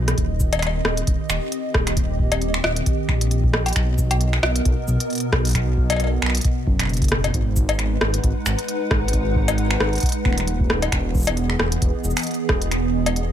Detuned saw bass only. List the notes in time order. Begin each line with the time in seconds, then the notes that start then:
Already playing: B1
0.18 D#1
0.85 D#1
1.07 D#1
1.30 D#1
1.74 D#1
2.64 D#1
3.09 A#1
3.76 B1
4.43 B1
4.65 B1
4.88 B1
5.33 B1
6.22 B1
6.67 F#1
7.34 G#1
8.01 G#1
8.24 G#1
8.46 G#1
8.91 G#1
9.80 G#1
10.25 D#1
10.92 E1
11.59 E1
11.82 E1
12.04 E1
12.49 E1